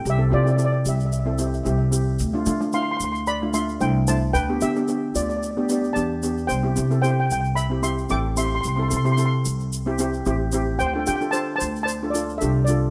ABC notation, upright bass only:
X:1
M:4/4
L:1/8
Q:"Swing 16ths" 1/4=112
K:C
V:1 name="Upright bass" clef=bass
C,, C,2 C,,3 C,,2 | D,, D,2 D,,3 C,,2 | D,, D,2 D,,3 E,,2 | C,, C,2 C,,3 A,,,2 |
C,, C,2 C,,3 A,,,2 | D,, D,2 D,,3 C,,2 |]